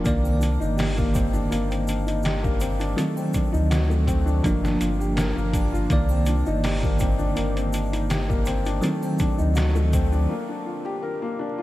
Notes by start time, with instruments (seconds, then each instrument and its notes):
0.04 sub bass C2, tine electric piano D#3 A#3 D5, felt piano A#3, kick, closed hi-hat, shaker
0.24 felt piano C4, triangle, shaker
0.40 felt piano D4, closed hi-hat, shaker
0.60 sub bass G1, felt piano D#4, shaker
0.77 felt piano G4, snare, open hi-hat, shaker
0.97 felt piano A#3, kick, shaker
1.13 felt piano C4, kick, closed hi-hat, shaker
1.33 felt piano D4, shaker
1.51 sub bass G1, felt piano A#3, closed hi-hat, shaker
1.70 felt piano C4, closed hi-hat, shaker
1.87 felt piano D4, closed hi-hat, shaker
2.06 felt piano D#4, closed hi-hat, shaker
2.23 felt piano G4, snare, closed hi-hat, shaker
2.43 felt piano A#3, kick, shaker
2.60 felt piano C4, closed hi-hat, shaker
2.79 felt piano D4, closed hi-hat, shaker
2.96 tine electric piano D#3 F#3 C4, felt piano A3, closed hi-hat, shaker
3.17 felt piano C4, triangle, shaker
3.33 felt piano D4, kick, closed hi-hat, shaker
3.53 sub bass D2, felt piano D#4, shaker
3.70 felt piano F#4, snare, closed hi-hat, shaker
3.90 felt piano A3, shaker
4.07 felt piano C4, kick, closed hi-hat, shaker
4.26 felt piano D4, shaker
4.43 sub bass G1, tine electric piano F3 A#3 D4, felt piano A#3, kick, closed hi-hat, shaker
4.63 felt piano D4, snare, shaker
4.80 sub bass G1, felt piano F4, closed hi-hat, shaker
4.99 felt piano G4, shaker
5.16 felt piano A#4, snare, closed hi-hat, shaker
5.36 sub bass G1, felt piano A#3, shaker
5.53 felt piano D4, kick, closed hi-hat, triangle, shaker
5.73 felt piano F4, shaker
5.90 sub bass C2, tine electric piano D#3 A#3 D5, felt piano A#3, kick, closed hi-hat, shaker
6.09 felt piano C4, triangle, shaker
6.26 felt piano D4, closed hi-hat, shaker
6.46 sub bass G1, felt piano D#4, shaker
6.63 felt piano G4, snare, open hi-hat, shaker
6.82 felt piano A#3, kick, shaker
6.99 felt piano C4, kick, closed hi-hat, shaker
7.19 felt piano D4, shaker
7.36 sub bass G1, felt piano A#3, closed hi-hat, shaker
7.55 felt piano C4, closed hi-hat, shaker
7.72 felt piano D4, closed hi-hat, shaker
7.92 felt piano D#4, closed hi-hat, shaker
8.09 felt piano G4, snare, closed hi-hat, shaker
8.29 felt piano A#3, kick, shaker
8.45 felt piano C4, closed hi-hat, shaker
8.65 felt piano D4, closed hi-hat, shaker
8.81 tine electric piano D#3 F#3 C4, felt piano A3, closed hi-hat, shaker
9.02 felt piano C4, triangle, shaker
9.19 felt piano D4, kick, closed hi-hat, shaker
9.38 sub bass D2, felt piano D#4, shaker
9.55 felt piano F#4, snare, closed hi-hat, shaker
9.75 felt piano A3, shaker
9.92 felt piano C4, kick, closed hi-hat, shaker
10.12 felt piano D4, shaker
10.29 felt piano A#3
10.48 felt piano D4
10.66 felt piano F4
10.85 felt piano G4
11.03 felt piano A#4
11.22 felt piano A#3
11.39 felt piano D4
11.58 felt piano F4